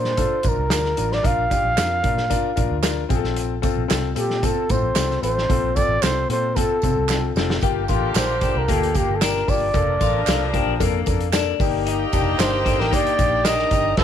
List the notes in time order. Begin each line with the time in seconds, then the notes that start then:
Already playing: A#2 D4 F4 A#4 C5
0.04 snare
0.17 D4 F4 A4, kick, closed hi-hat, tambourine
0.43 A#1 D4 F4 A#4, kick, closed hi-hat, tambourine
0.49 A#4
0.58 C2
0.70 D2 D4 F4 A#4, snare, clap, closed hi-hat, tambourine
0.85 snare
0.97 A1 D4 F4 A#4, closed hi-hat, tambourine
1.12 D5, snare
1.23 A#1 D4 F4 A#4 F5, kick, closed hi-hat, tambourine
1.50 D4 F4 G4, kick, closed hi-hat, tambourine
1.65 A#1
1.76 F2 D4 F4 A#4, snare, clap, closed hi-hat, tambourine
2.03 A#2 D4 F4 A#4, kick, closed hi-hat
2.17 snare
2.30 D4 F4 A#4, kick, closed hi-hat, tambourine
2.56 A#1 D4 F4 A#4, kick, closed hi-hat, tambourine
2.70 D2
2.82 D4 F4 A#4, snare, clap, closed hi-hat, tambourine
3.09 A#1 C4 F4 G#4, kick, closed hi-hat, tambourine
3.16 A4
3.24 snare
3.36 closed hi-hat, tambourine
3.62 C4 F4 A4, kick, closed hi-hat, tambourine
3.77 A#1
3.88 C2 C4 F4 A4, snare, clap, closed hi-hat, tambourine
4.15 A#2 C4 F4 G4 A4, closed hi-hat, tambourine
4.30 snare
4.43 C4 F4 A4, kick, closed hi-hat, tambourine
4.69 A2 C4 F4 A4 C5, kick, closed hi-hat, tambourine
4.83 A#1
4.96 C2 C4 F4 A4, snare, clap, closed hi-hat, tambourine
5.11 snare
5.22 A1 C4 F4 A4 C5, closed hi-hat, tambourine
5.38 snare
5.49 A#1 C4 F4 A4, kick, closed hi-hat, tambourine
5.75 C4 F4 A4 D5, kick, closed hi-hat, tambourine
5.89 A1
6.02 C2 C4 F4 A4 C5, snare, clap, closed hi-hat, tambourine
6.29 A#2 C4 F4 A4 C5, closed hi-hat
6.56 C4 F4 A4, kick, closed hi-hat, tambourine
6.82 C3 C4 F4 A4, kick, closed hi-hat, tambourine
6.96 C2
7.09 C4 F4 A4, snare, clap, tambourine
7.35 F1 C4 F4 A4, snare, tambourine
7.50 snare
7.61 G1 D3 A#3 F4 G4, kick, closed hi-hat, tambourine
7.88 A1 A#3 F4 G4, kick, closed hi-hat, tambourine
8.15 A#1 A#3 F4 G4 C5, snare, clap, closed hi-hat, tambourine
8.41 A#3 D4 F4 G4, kick, closed hi-hat, tambourine
8.55 C2 A#4
8.68 D2 A#3 F4 G4 A4, kick, closed hi-hat, tambourine
8.83 closed hi-hat
8.94 A#3 F4 G4, kick, closed hi-hat, tambourine
9.09 G1
9.15 A4
9.21 A#3 D4 F4 G4 A#4, snare, clap, closed hi-hat, tambourine
9.35 snare
9.47 G1 A#3 F4 G4 D5, kick, open hi-hat, tambourine
9.74 F1 F3 A#3 D4 A4 A#4, kick, closed hi-hat, tambourine
10.00 A1 A#3 D4 F4 A4, kick, closed hi-hat, tambourine
10.27 C2 A#3 D4 F4 A4, snare, clap, closed hi-hat, tambourine
10.53 A#3 D4 G4, kick, closed hi-hat
10.67 A#1
10.80 F2 A#3 D4 A4, kick, closed hi-hat, tambourine
11.06 F2 A#3 D4 A4, kick, closed hi-hat, tambourine
11.20 closed hi-hat
11.33 A#3 D4 A4, snare, clap, closed hi-hat, tambourine
11.60 G1 A#3 D#4 G4 D#5, kick, open hi-hat, tambourine
11.86 D#4 G4 G5, closed hi-hat, tambourine
12.12 F1 D4 D#4 G4, kick, closed hi-hat, tambourine
12.38 G1 D4 D#4 G4 C5, snare, clap, closed hi-hat, tambourine
12.64 C4 D4 D#4 A4, kick, closed hi-hat, tambourine
12.79 A1 A#4, snare
12.91 A#3 D4 D#4 G4 D5, kick, closed hi-hat, tambourine
13.05 muted fingered electric bass stroke, closed hi-hat
13.19 A#1 D4 D#4 G4, kick, closed hi-hat, tambourine
13.44 D4 D#4 G4 A#4 D#5 A#5, snare, clap, closed hi-hat, tambourine
13.59 snare
13.71 G1 D4 D#4 G4, kick, closed hi-hat, tambourine
13.97 F1 C4 D#4 F4 A4 C5 D#5 A5, kick, snare, crash